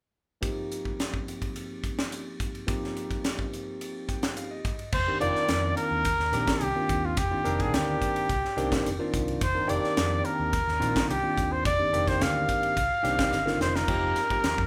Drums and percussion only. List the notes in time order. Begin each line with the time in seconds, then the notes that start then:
0.43 kick, hi-hat pedal, ride
0.72 hi-hat pedal, ride
0.85 kick
1.00 snare, hi-hat pedal, ride
1.14 kick
1.28 hi-hat pedal, ride
1.42 kick, ride
1.56 hi-hat pedal, ride
1.84 kick, hi-hat pedal, ride
1.99 snare
2.12 hi-hat pedal, ride
2.40 kick, hi-hat pedal, ride
2.55 ride
2.68 kick, hi-hat pedal, ride
2.84 snare
2.97 hi-hat pedal, ride
3.11 kick, ride
3.24 snare, hi-hat pedal, ride
3.39 kick
3.53 hi-hat pedal, ride
3.81 hi-hat pedal, ride
4.09 kick, hi-hat pedal, ride
4.23 snare, ride
4.37 hi-hat pedal, ride
4.65 kick, hi-hat pedal, ride
4.79 ride
4.92 kick, crash
5.21 hi-hat pedal, ride
5.35 snare
5.48 snare, hi-hat pedal, ride
5.77 hi-hat pedal, ride
6.05 kick, hi-hat pedal, ride
6.20 snare
6.33 snare, hi-hat pedal, ride
6.47 kick, snare, ride
6.61 hi-hat pedal, ride
6.89 kick, hi-hat pedal, ride
7.17 kick, hi-hat pedal, ride
7.45 hi-hat pedal, ride
7.60 kick, ride
7.74 snare, hi-hat pedal, ride
8.02 kick, hi-hat pedal, ride
8.16 ride
8.29 kick, hi-hat pedal, ride
8.45 snare
8.58 hi-hat pedal, ride
8.72 kick, snare, ride
8.86 hi-hat pedal, ride
9.14 kick, hi-hat pedal, ride
9.28 ride
9.41 kick, hi-hat pedal, ride
9.69 hi-hat pedal, ride
9.84 snare
9.97 snare, hi-hat pedal, ride
10.25 hi-hat pedal, ride
10.53 kick, hi-hat pedal, ride
10.68 snare
10.82 hi-hat pedal, ride
10.96 kick, snare, ride
11.10 hi-hat pedal, ride
11.37 kick, hi-hat pedal, ride
11.65 kick, hi-hat pedal, ride
11.94 hi-hat pedal, ride
12.08 kick, snare, ride
12.21 snare, hi-hat pedal, ride
12.49 kick, hi-hat pedal, ride
12.63 ride
12.77 kick, hi-hat pedal, ride
13.05 snare, hi-hat pedal, ride
13.19 kick, snare, ride
13.32 snare, hi-hat pedal
13.47 snare
13.61 snare, hi-hat pedal
13.76 snare
13.88 kick, crash
14.16 snare, hi-hat pedal, ride
14.30 kick, ride
14.44 snare, hi-hat pedal, ride
14.58 kick